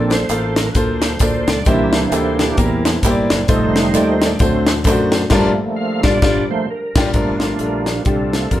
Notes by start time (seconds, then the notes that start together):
Already playing: A#1 A#2 F3 A#3 C4 D4 F4 A4 D5
0.10 C5, snare, closed hi-hat, tambourine
0.29 A1 A#3 F4 A4 F5, clap, closed hi-hat, tambourine
0.56 A#4, snare, closed hi-hat, tambourine
0.69 B4
0.75 D2 A#3 F4 A4 C5, kick, closed hi-hat, tambourine
1.02 snare, clap, closed hi-hat, tambourine
1.19 D2 A#3 F4 A4 D5, kick, clap, closed hi-hat, tambourine
1.47 C#2 D5, snare, closed hi-hat, tambourine
1.65 C2 C3 E3 G3 A#3 C4 D4 D#4 G4 C5 E5, kick, closed hi-hat, tambourine
1.72 E4
1.93 C5, snare, closed hi-hat, tambourine
2.12 D2 A#3 D#4 G4 A4, clap, closed hi-hat, tambourine
2.18 E4
2.39 E3 A#3 D4 G4, snare, closed hi-hat, tambourine
2.57 E2 A#3 D4 G4 A#4, kick, closed hi-hat, tambourine
2.63 E4
2.85 snare, clap, closed hi-hat, tambourine
3.02 G1 A#3 E4 G4 C5, kick, clap, closed hi-hat, tambourine
3.10 D5
3.30 F#1 A#4, snare, closed hi-hat, tambourine
3.48 F1 D#3 F3 G3 A3 D#4 F4 A4 C5, kick, closed hi-hat, tambourine
3.65 C5
3.76 C5, snare, closed hi-hat, tambourine
3.80 B4
3.94 D#2 A3 D#4 F4 C5 D5, clap, closed hi-hat, tambourine
4.11 C5
4.22 snare, closed hi-hat, tambourine
4.26 D5
4.39 D2 D3 F#3 A3 C4 D4 F#4 C5, kick, closed hi-hat, tambourine
4.43 C5
4.67 snare, clap, closed hi-hat, tambourine
4.84 F#2 A3 D4 F4 C5, kick, clap, closed hi-hat, tambourine
4.91 F#4
5.12 snare, closed hi-hat, tambourine
5.30 G1 G2 F3 G3 A3 A#3 D4 F4 A#4, kick, snare, crash
5.76 F5
6.03 G1 G3 D4 F4 D5, kick, snare
6.22 G1 G3 D4 F4, kick, snare
6.49 F3 A3 A#3 C5
6.70 A#4
6.95 G1 G3 D4 F4 G4, kick, snare, crash
7.13 G1 G2 D3 F3 G3 A3 A#3 D4 F4 A#4, kick, closed hi-hat
7.40 G3 D4 F4 A#4, snare, closed hi-hat
7.59 A#1 G3 D4 F4 A4, closed hi-hat
7.66 A#4
7.86 snare, closed hi-hat
8.05 C2 G3 D4 F4 G4 A4, kick, closed hi-hat
8.33 F3 A3 A#3, snare, closed hi-hat
8.51 F2 G3 D4 F4 A#4, kick, closed hi-hat